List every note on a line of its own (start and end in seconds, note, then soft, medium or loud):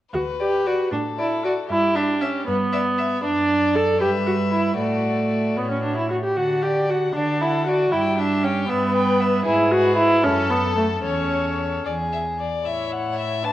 0.13 0.76 D2 soft
0.13 0.22 F#4 soft
0.13 0.94 B4 soft
0.40 0.68 G4 soft
0.40 0.48 D5 soft
0.66 0.92 F#4 medium
0.66 0.74 D5 soft
0.92 1.54 A2 soft
0.92 1.00 D4 soft
0.92 1.69 A4 soft
1.19 1.44 E4 soft
1.19 1.27 D5 soft
1.44 1.52 F#4 medium
1.44 1.53 D5 soft
1.69 2.31 G2 soft
1.69 1.97 E4 medium
1.69 2.45 G4 soft
1.96 2.23 D4 medium
1.96 2.04 E5 soft
2.21 2.47 C#4 medium
2.21 2.29 E5 soft
2.47 3.08 G2 medium
2.47 3.22 B3 medium
2.47 2.55 B4 soft
2.73 2.81 D5 soft
2.73 2.81 E5 soft
2.98 3.06 E5 soft
2.98 3.23 E5 soft
3.23 4.02 F#2 soft
3.23 3.77 D4 medium
3.23 4.01 D5 soft
3.23 4.02 D5 medium
3.75 4.00 A4 medium
4.00 4.77 G2 soft
4.00 4.09 G4 medium
4.00 4.78 B4 soft
4.00 4.78 E5 soft
4.26 4.34 F#4 medium
4.51 4.77 E4 medium
4.78 5.55 A2 soft
4.78 5.58 A3 soft
4.78 5.95 F#4 soft
4.78 5.58 D5 soft
5.57 6.15 A2 soft
5.57 5.70 B3 soft
5.57 6.16 C#5 soft
5.71 5.83 C#4 soft
5.83 5.97 D4 soft
5.97 6.09 E4 soft
6.10 6.15 F#4 soft
6.23 6.38 G4 soft
6.36 7.06 D3 soft
6.36 6.64 F#4 medium
6.36 6.65 F#5 soft
6.62 6.91 G4 medium
6.62 6.92 D5 soft
6.89 7.14 F#4 soft
6.89 7.18 F#5 soft
7.15 7.83 D3 soft
7.15 7.43 D4 soft
7.15 7.88 A4 soft
7.15 7.41 D5 soft
7.41 7.66 E4 soft
7.41 7.69 F#5 soft
7.66 7.94 F#4 medium
7.66 7.92 D5 soft
7.92 8.60 G2 soft
7.92 8.17 E4 medium
7.92 8.71 G4 soft
7.92 8.20 G5 soft
8.17 8.45 D4 medium
8.17 8.45 E5 soft
8.43 8.68 C#4 medium
8.43 8.71 G5 soft
8.69 9.37 G2 soft
8.69 9.44 B3 medium
8.69 9.45 B4 medium
8.69 8.95 E5 soft
8.95 9.22 G5 soft
9.20 9.45 E5 soft
9.45 10.25 G#2 soft
9.45 9.73 E4 medium
9.45 10.22 G#4 medium
9.45 10.26 B4 soft
9.71 9.96 F#4 medium
9.97 10.25 E4 medium
10.23 11.04 F#2 medium
10.23 10.52 C#4 medium
10.23 11.04 A4 medium
10.23 11.03 A4 medium
10.50 10.76 B3 medium
10.77 10.85 A3 medium
11.04 11.84 E2 soft
11.04 11.83 C#4 medium
11.04 11.86 A4 soft
11.04 11.79 C#5 soft
11.85 12.44 E2 soft
11.85 12.45 G#4 soft
11.85 11.94 D5 soft
12.13 12.21 E5 soft
12.39 12.67 D5 soft
12.65 13.53 A2 soft
12.65 13.44 E4 soft
12.65 13.45 C#5 soft
12.65 12.94 E5 soft
12.92 13.18 F#5 medium
13.18 13.46 E5 medium
13.43 13.53 D4 soft
13.43 13.53 B4 soft
13.43 13.53 A5 medium